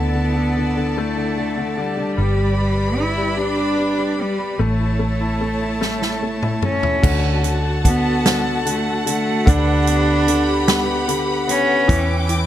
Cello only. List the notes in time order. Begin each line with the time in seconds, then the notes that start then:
Already playing: B3
0.98 A3
1.79 G3
3.01 E4
3.41 D4
4.22 G3
4.61 A3
6.64 C#4
7.86 B3
8.67 A3
9.07 A3
9.48 D4
11.49 C#4